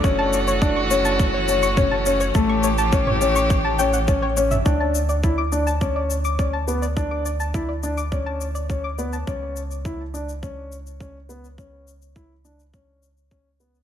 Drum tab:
SH |x-xxx-xxx-xxx-xx|x-xxx-xxx-xxx-xx|x-xxx-xxx-xxx-xx|x-xxx-xxx-xxx-xx|
T2 |------------o---|-----o---------o|----------------|----------------|
BD |o---o---o---o---|o---o---o---o---|o---o---o---o---|o---o---o---o---|

SH |x-xxx-xxx-xxx-xx|x-xxx-xxx-xxx-xx|
T2 |----------------|----------------|
BD |o---o---o---o---|o---o---o---o---|